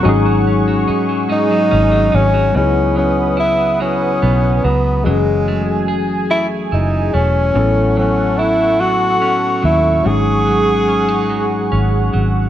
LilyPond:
<<
  \new Staff \with { instrumentName = "Analog synth pad" } { \time 6/8 \key cis \minor \tempo 4. = 48 << { cis'''2. | b'2. | r2. | cis'''2.~ |
cis'''2. | } \\ { <gis' fis''>2. | <fis'' dis'''>2. | <gis' gis''>2. | <a' fis''>2. |
<gis' fis''>2. | } >> }
  \new Staff \with { instrumentName = "Tenor saxophone" } { \time 6/8 \key cis \minor r4. dis'4 cis'8 | cis'8 cis'8 e'8 cis'4 b8 | gis4 r8 e'8 dis'8 cis'8~ | cis'8 cis'8 e'8 fis'4 e'8 |
gis'2~ gis'8 r8 | }
  \new Staff \with { instrumentName = "Tine electric piano" } { \time 6/8 \key cis \minor <fis gis cis' dis' gis'>2. | <fis b e' gis' dis''>2. | <e fis cis' fis' gis'>2. | <fis b cis' e' a'>2. |
<fis gis cis' dis' gis'>2. | }
  \new Staff \with { instrumentName = "Clean electric guitar" } { \clef bass \time 6/8 \key cis \minor <gis, dis'>16 fis16 cis'16 fis16 dis'16 fis16 <gis, dis'>16 fis16 cis'16 fis16 dis'16 fis16 | cis8 fis8 e'8 fis8 b8 fis8 | fis8 a8 gis'8 a8 e'8 a8 | a,8 fis8 e'8 fis8 cis'8 fis8 |
gis,8 fis8 cis'16 dis'16 fis8 cis'8 fis8 | }
  \new Staff \with { instrumentName = "Fingered electric bass" } { \clef bass \time 6/8 \key cis \minor gis,,4 r4 gis,,8 gis,,8 | cis,2 b,,8 cis,8 | fis,,2 fis,,8 e,,8 | a,,2 fis,,8 dis,8 |
gis,,2 gis,,8 gis,,8 | }
>>